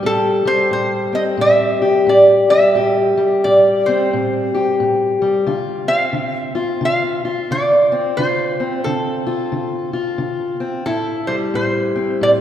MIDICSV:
0, 0, Header, 1, 3, 480
1, 0, Start_track
1, 0, Key_signature, 0, "minor"
1, 0, Tempo, 676437
1, 34, Time_signature, 4, 2, 24, 8
1, 8805, End_track
2, 0, Start_track
2, 0, Title_t, "Resonator guitar played with a steel bar"
2, 0, Program_c, 0, 25
2, 45, Note_on_c, 0, 69, 91
2, 337, Note_on_c, 0, 72, 96
2, 343, Note_off_c, 0, 69, 0
2, 509, Note_off_c, 0, 72, 0
2, 518, Note_on_c, 0, 72, 92
2, 791, Note_off_c, 0, 72, 0
2, 815, Note_on_c, 0, 75, 86
2, 865, Note_off_c, 0, 75, 0
2, 1003, Note_on_c, 0, 76, 106
2, 1485, Note_on_c, 0, 74, 89
2, 1495, Note_off_c, 0, 76, 0
2, 1756, Note_off_c, 0, 74, 0
2, 1776, Note_on_c, 0, 76, 105
2, 2440, Note_off_c, 0, 76, 0
2, 2442, Note_on_c, 0, 74, 86
2, 2739, Note_on_c, 0, 72, 75
2, 2744, Note_off_c, 0, 74, 0
2, 3374, Note_off_c, 0, 72, 0
2, 4174, Note_on_c, 0, 77, 104
2, 4493, Note_off_c, 0, 77, 0
2, 4493, Note_on_c, 0, 76, 104
2, 4625, Note_off_c, 0, 76, 0
2, 4862, Note_on_c, 0, 77, 107
2, 5334, Note_on_c, 0, 74, 96
2, 5344, Note_off_c, 0, 77, 0
2, 5794, Note_off_c, 0, 74, 0
2, 5797, Note_on_c, 0, 72, 92
2, 6249, Note_off_c, 0, 72, 0
2, 6275, Note_on_c, 0, 69, 78
2, 7500, Note_off_c, 0, 69, 0
2, 7705, Note_on_c, 0, 69, 76
2, 7999, Note_on_c, 0, 72, 79
2, 8013, Note_off_c, 0, 69, 0
2, 8050, Note_off_c, 0, 72, 0
2, 8198, Note_on_c, 0, 72, 83
2, 8646, Note_off_c, 0, 72, 0
2, 8678, Note_on_c, 0, 74, 100
2, 8721, Note_off_c, 0, 74, 0
2, 8805, End_track
3, 0, Start_track
3, 0, Title_t, "Steel-string acoustic guitar"
3, 0, Program_c, 1, 25
3, 0, Note_on_c, 1, 55, 66
3, 0, Note_on_c, 1, 60, 63
3, 19, Note_on_c, 1, 45, 75
3, 24, Note_on_c, 1, 67, 74
3, 319, Note_off_c, 1, 55, 0
3, 322, Note_on_c, 1, 55, 60
3, 470, Note_off_c, 1, 45, 0
3, 505, Note_on_c, 1, 45, 73
3, 797, Note_off_c, 1, 60, 0
3, 800, Note_on_c, 1, 60, 64
3, 954, Note_off_c, 1, 45, 0
3, 975, Note_on_c, 1, 45, 74
3, 1281, Note_off_c, 1, 67, 0
3, 1290, Note_on_c, 1, 67, 63
3, 1429, Note_off_c, 1, 45, 0
3, 1466, Note_on_c, 1, 45, 75
3, 1768, Note_off_c, 1, 55, 0
3, 1777, Note_on_c, 1, 55, 58
3, 1915, Note_off_c, 1, 45, 0
3, 1935, Note_off_c, 1, 67, 0
3, 1952, Note_on_c, 1, 45, 77
3, 1958, Note_on_c, 1, 67, 71
3, 2243, Note_off_c, 1, 55, 0
3, 2252, Note_on_c, 1, 55, 61
3, 2398, Note_off_c, 1, 45, 0
3, 2448, Note_on_c, 1, 45, 76
3, 2751, Note_off_c, 1, 60, 0
3, 2754, Note_on_c, 1, 60, 62
3, 2886, Note_off_c, 1, 45, 0
3, 2932, Note_on_c, 1, 45, 73
3, 3213, Note_off_c, 1, 67, 0
3, 3225, Note_on_c, 1, 67, 61
3, 3369, Note_off_c, 1, 45, 0
3, 3406, Note_on_c, 1, 45, 74
3, 3693, Note_off_c, 1, 55, 0
3, 3702, Note_on_c, 1, 55, 58
3, 3846, Note_off_c, 1, 45, 0
3, 3863, Note_off_c, 1, 67, 0
3, 3878, Note_on_c, 1, 50, 76
3, 3882, Note_on_c, 1, 65, 75
3, 3884, Note_off_c, 1, 55, 0
3, 3900, Note_off_c, 1, 60, 0
3, 4170, Note_on_c, 1, 60, 59
3, 4322, Note_off_c, 1, 50, 0
3, 4347, Note_on_c, 1, 50, 74
3, 4645, Note_off_c, 1, 65, 0
3, 4648, Note_on_c, 1, 65, 70
3, 4796, Note_off_c, 1, 50, 0
3, 4832, Note_on_c, 1, 50, 75
3, 5131, Note_off_c, 1, 65, 0
3, 5144, Note_on_c, 1, 65, 64
3, 5278, Note_off_c, 1, 50, 0
3, 5327, Note_on_c, 1, 50, 74
3, 5617, Note_off_c, 1, 60, 0
3, 5620, Note_on_c, 1, 60, 63
3, 5766, Note_off_c, 1, 50, 0
3, 5781, Note_off_c, 1, 65, 0
3, 5805, Note_on_c, 1, 50, 76
3, 5816, Note_on_c, 1, 65, 66
3, 5827, Note_off_c, 1, 60, 0
3, 6102, Note_on_c, 1, 60, 61
3, 6244, Note_off_c, 1, 50, 0
3, 6287, Note_on_c, 1, 50, 78
3, 6566, Note_off_c, 1, 65, 0
3, 6575, Note_on_c, 1, 65, 71
3, 6725, Note_off_c, 1, 50, 0
3, 6755, Note_on_c, 1, 50, 75
3, 7040, Note_off_c, 1, 65, 0
3, 7048, Note_on_c, 1, 65, 65
3, 7198, Note_off_c, 1, 50, 0
3, 7225, Note_on_c, 1, 50, 73
3, 7514, Note_off_c, 1, 60, 0
3, 7523, Note_on_c, 1, 60, 63
3, 7672, Note_off_c, 1, 50, 0
3, 7690, Note_off_c, 1, 60, 0
3, 7692, Note_off_c, 1, 65, 0
3, 7704, Note_on_c, 1, 45, 77
3, 7710, Note_on_c, 1, 64, 77
3, 8007, Note_on_c, 1, 55, 58
3, 8152, Note_off_c, 1, 45, 0
3, 8188, Note_on_c, 1, 45, 75
3, 8484, Note_on_c, 1, 60, 60
3, 8633, Note_off_c, 1, 45, 0
3, 8666, Note_on_c, 1, 45, 76
3, 8805, Note_off_c, 1, 45, 0
3, 8805, Note_off_c, 1, 55, 0
3, 8805, Note_off_c, 1, 60, 0
3, 8805, Note_off_c, 1, 64, 0
3, 8805, End_track
0, 0, End_of_file